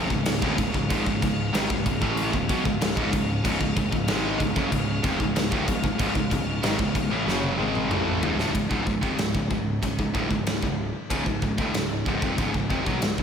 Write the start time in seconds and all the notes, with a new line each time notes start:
Already playing: C3 C#4 G#4 F5
0.10 C#1 C#2 G#2, kick
0.26 C#1 C#2 G#2, snare, crash
0.42 D1 D2 A2, kick
0.58 C#1 C#2 G#2, kick, crash
0.74 C#1 C#2 G#2, kick
0.90 C#1 C#2 G#2, kick, crash
1.06 C#1 C#2 G#2, kick
1.22 C#1 C#2 G#2, kick, crash
1.53 G#1 G#2 D#3, snare, crash
1.70 C#1 C#2 G#2, kick
1.86 C#1 C#2 G#2, kick, crash
2.01 A1 A2 E3 A3, kick
2.17 crash
2.33 C#1 C#2 G#2, kick
2.49 B1 B2 F#3, kick, crash
2.64 C#1 C#2 G#2, kick
2.81 C#1 C#2 G#2, snare, crash
2.96 C#1 C#2 G#2, kick
3.12 C#1 C#2 G#2, kick, crash
3.44 C#1 C#2 G#2, kick, crash
3.61 C#1 C#2 G#2, kick
3.77 C#1 C#2 G#2, kick, crash
3.92 C#1 C#2 G#2, kick
4.08 G#1 G#2 D#3 G#3, snare, crash
4.40 C#1 C#2 G#2, kick, crash
4.56 F#1 F#2 C#3, kick
4.72 C#1 C#2 G#2, kick, crash
5.04 F1 F2 C3, kick, crash
5.20 C#1 C#2 G#2, kick
5.36 C#1 C#2 G#2, snare, crash
5.52 D1 D2 A2, kick
5.68 C#1 C#2 G#2, kick, crash
5.84 C#1 C#2 G#2, kick
5.99 C#1 C#2 G#2, kick, crash
6.15 C#1 C#2 G#2, kick
6.31 C#1 C#2 G#2, kick, crash
6.63 G#1 G#2 D#3, snare, crash
6.79 C#1 C#2 G#2, kick
6.95 C#1 C#2 G#2, kick, crash
7.10 A1 A2 E3
7.27 F#1 F#2 C#3 F#3, snare
7.43 high tom
7.58 G#1 G#2 D#3 G#3
7.75 mid tom
7.89 A1 A2 E3 A3, mid tom
8.21 C#1 C#2 G#2, floor tom
8.37 D1 D2 A2, snare
8.55 C#1 C#2 G#2, kick, ride bell
8.71 C#1 C#2 G#2, kick
8.87 C#1 C#2 G#2, kick
9.02 F1 F2 C3, kick
9.18 C#1 C#2 G#2, snare, ride bell
9.34 C#1 C#2 G#2, kick
9.50 C#1 C#2 G#2, kick
9.83 C#1 C#2 G#2, kick, ride bell
9.98 C#1 C#2 G#2, kick
10.14 D1 D2 A2, kick
10.30 C#1 C#2 G#2, kick
10.46 C#1 C#2 G#2, snare, ride bell
10.62 C#1 C#2 G#2, kick
11.10 C#1 C#2 G#2, kick, ride bell
11.26 C#1 C#2 G#2, kick
11.42 C#1 C#2 G#2, kick
11.58 D1 D2 A2, kick
11.74 C#1 C#2 G#2, snare, ride bell
12.06 C#1 C#2 G#2, kick
12.22 F1 F2 C3, kick
12.38 C#1 C#2 G#2, kick, ride bell
12.54 C#1 C#2 G#2, kick
12.69 F1 F2 C3, kick
12.86 B1 B2 F#3, kick
13.02 C#1 C#2 G#2, snare, ride bell
13.18 C#1 C#2 G#2, kick